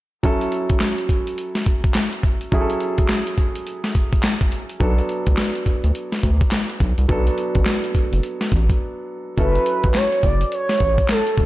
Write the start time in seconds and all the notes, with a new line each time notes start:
0.23 F#3 C#4 E4 A4, kick, closed hi-hat
0.41 closed hi-hat
0.52 closed hi-hat
0.70 kick, closed hi-hat
0.80 snare, clap, closed hi-hat
0.98 closed hi-hat
1.09 kick, closed hi-hat
1.27 closed hi-hat
1.38 closed hi-hat
1.55 snare, closed hi-hat
1.66 kick, closed hi-hat
1.84 kick, closed hi-hat
1.94 snare, clap, closed hi-hat
2.13 closed hi-hat
2.23 kick, closed hi-hat
2.41 closed hi-hat
2.52 F#3 C#4 E4 G#4, kick, closed hi-hat
2.61 A4
2.70 closed hi-hat
2.80 closed hi-hat
2.98 kick, closed hi-hat
3.08 snare, clap, closed hi-hat
3.27 closed hi-hat
3.38 kick, closed hi-hat
3.55 closed hi-hat
3.67 closed hi-hat
3.84 snare, closed hi-hat
3.95 kick, closed hi-hat
4.13 kick, closed hi-hat
4.23 snare, clap, closed hi-hat
4.41 kick, closed hi-hat
4.52 closed hi-hat
4.69 closed hi-hat
4.80 B1 F#3 B3 D4 A4, kick, closed hi-hat
4.98 closed hi-hat
5.09 closed hi-hat
5.27 C#2, kick, closed hi-hat
5.37 snare, clap, closed hi-hat
5.55 closed hi-hat
5.66 D2, kick, closed hi-hat
5.84 D2, closed hi-hat
5.95 closed hi-hat
6.12 snare, closed hi-hat
6.23 D2, kick, closed hi-hat
6.41 kick, closed hi-hat
6.51 snare, clap, closed hi-hat
6.70 closed hi-hat
6.80 B1, kick, closed hi-hat
6.98 C2, closed hi-hat
7.08 B1 F#3 B3 D4 A4, kick, closed hi-hat
7.27 closed hi-hat
7.38 closed hi-hat
7.55 A1, kick, closed hi-hat
7.65 snare, clap, closed hi-hat
7.84 closed hi-hat
7.95 F#1, kick, closed hi-hat
8.12 F#1, closed hi-hat
8.23 closed hi-hat
8.41 snare, closed hi-hat
8.52 A1, kick, closed hi-hat
8.70 kick, closed hi-hat
9.37 F#1 F#3 C#4 E4 A4 B4, kick, closed hi-hat
9.55 closed hi-hat
9.66 closed hi-hat
9.84 A1, kick, closed hi-hat
9.94 C#5, snare, clap, closed hi-hat
10.12 closed hi-hat
10.23 F#1 D5, kick, closed hi-hat
10.41 closed hi-hat
10.52 C#5, closed hi-hat
10.69 snare, closed hi-hat
10.80 A1, kick, closed hi-hat
10.98 kick, closed hi-hat
11.08 A4, snare, clap, closed hi-hat
11.27 closed hi-hat
11.38 E1, kick, closed hi-hat